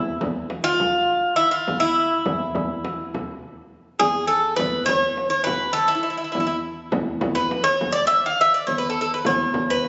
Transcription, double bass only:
0.00 0.18 E2 medium
0.23 1.45 E2 medium
1.68 2.17 E2 medium
2.26 2.51 E2 medium
2.55 3.77 E2 loud
4.01 4.50 E2 medium
4.59 4.84 E2 medium
4.89 6.11 E2 medium
6.35 6.84 E2 medium
6.93 7.17 E2 medium
7.22 8.44 E2 medium
8.68 9.17 E2 medium
9.26 9.50 E2 medium
9.55 9.88 E2 medium

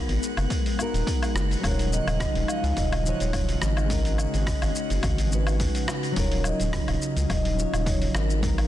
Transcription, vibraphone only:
0.00 1.32 A#4 medium
1.65 1.91 C#5 medium
1.93 2.50 D#5 medium
2.49 2.78 F5 loud
2.78 3.22 D#5 loud
3.21 3.63 C#5 medium
3.62 5.56 D#5 medium
6.19 6.47 C#5 loud
6.46 7.31 D#5 loud
7.32 7.89 D#5 loud
7.88 8.00 C#5 loud
8.16 8.67 A#4 medium

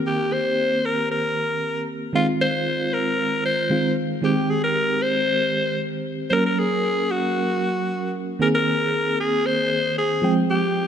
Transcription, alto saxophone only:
0.07 0.34 G4 medium
0.33 0.87 C5 loud
0.85 1.11 A#4 medium
1.11 1.85 A#4 medium
2.16 2.27 F4 medium
2.41 2.95 C5 loud
2.93 3.45 A#4 loud
3.45 3.94 C5 loud
4.25 4.52 G4 medium
4.50 4.63 G#4 medium
4.64 5.04 A#4 medium
5.02 5.80 C5 loud
6.30 6.45 A#4 loud
6.30 6.34 C5 medium
6.46 6.61 A#4 loud
6.59 7.13 G#4 loud
7.11 8.15 F#4 medium
8.41 8.47 A#4 loud
8.55 9.15 A#4 loud
9.20 9.47 G#4 loud
9.46 9.97 C5 loud
9.98 10.34 G#4 medium
10.50 10.87 G4 loud

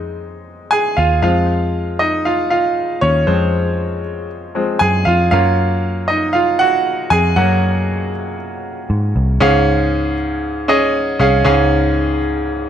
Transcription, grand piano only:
0.00 1.23 G#3 soft
0.00 1.24 C4 soft
0.00 1.25 D#4 medium
0.00 0.68 D#5 medium
0.71 0.96 G#4 medium
0.71 0.98 G#5 medium
0.97 1.22 F4 medium
0.97 1.21 F5 medium
1.22 1.96 F3 soft
1.22 1.96 G#3 soft
1.22 1.96 C4 soft
1.22 1.96 F4 medium
1.22 2.02 F5 medium
1.99 2.24 D#4 medium
1.99 2.26 D#5 medium
2.25 2.50 F4 medium
2.25 2.49 F5 medium
2.50 2.99 F4 medium
2.50 3.04 F5 medium
3.01 3.26 C#4 medium
3.01 3.28 C#5 medium
3.27 4.00 F3 medium
3.27 4.00 G#3 soft
3.27 4.26 C4 medium
3.27 4.26 C5 medium
4.55 4.78 F3 soft
4.55 4.78 G#3 soft
4.55 4.79 C4 soft
4.79 5.05 G#4 medium
4.79 5.07 G#5 medium
5.05 5.31 F4 medium
5.05 5.30 F5 medium
5.31 6.05 F#3 soft
5.31 6.05 A#3 soft
5.31 6.05 C#4 medium
5.31 6.05 F4 medium
5.31 6.04 F5 medium
6.08 6.33 D#4 medium
6.08 6.35 D#5 medium
6.33 6.59 F4 medium
6.33 6.60 F5 medium
6.59 7.08 F#4 medium
6.59 7.12 F#5 loud
7.10 7.35 G#4 medium
7.10 7.37 G#5 medium
7.36 8.09 F#3 medium
7.36 8.10 A#3 soft
7.36 8.10 C#4 medium
7.36 8.35 F#4 medium
7.36 8.35 F#5 medium
9.40 10.14 G#2 medium
9.40 10.13 C#4 medium
9.40 10.13 G#4 medium
9.40 10.14 F5 loud
10.68 11.05 C#4 medium
10.68 11.05 G#4 medium
10.68 11.05 D#5 medium
11.19 11.38 C#4 medium
11.19 11.38 G#4 medium
11.19 11.38 F5 medium
11.44 12.18 G#2 medium
11.44 12.17 C#4 medium
11.44 12.17 G#4 medium
11.44 12.18 F5 medium

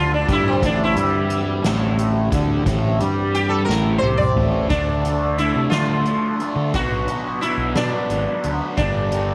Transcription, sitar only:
0.00 0.12 F4 medium
0.14 0.30 D4 medium
0.32 0.48 E4 medium
0.48 0.64 C4 medium
0.65 0.80 D4 medium
0.84 2.47 E4 medium
3.34 3.52 G4 medium
3.49 3.64 A4 medium
3.65 3.98 A#4 medium
3.98 4.18 C5 medium
4.17 4.65 D5 medium
4.69 5.38 D4 medium
5.38 5.69 E4 medium
5.70 6.69 F4 medium
6.75 7.38 F#4 medium
7.41 7.75 E4 medium
7.76 8.48 D4 medium
8.77 9.34 D4 medium

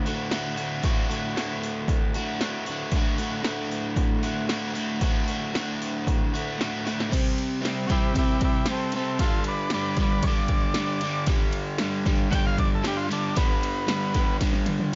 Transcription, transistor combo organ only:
7.87 7.90 F#4 medium
7.91 8.14 E4 medium
7.91 8.16 G4 medium
8.18 8.41 E4 medium
8.18 8.42 G4 medium
8.44 8.67 E4 medium
8.44 8.68 G4 medium
8.71 8.94 C4 medium
8.71 8.95 A4 medium
8.96 9.19 C4 medium
8.96 9.19 A4 medium
9.20 9.44 F4 medium
9.20 9.45 A4 medium
9.47 9.71 B4 medium
9.47 9.72 D5 medium
9.74 9.97 B4 medium
9.74 9.98 D5 loud
10.02 10.24 B4 medium
10.02 10.25 D5 medium
10.23 10.26 C#5 medium
10.23 11.26 D5 loud
12.31 12.34 F#5 medium
12.31 12.46 G5 loud
12.46 12.58 F5 medium
12.59 12.71 D5 loud
12.75 12.85 A4 medium
12.87 12.98 G4 loud
12.97 13.09 F4 medium
13.13 13.37 D4 loud
13.37 14.37 B3 loud

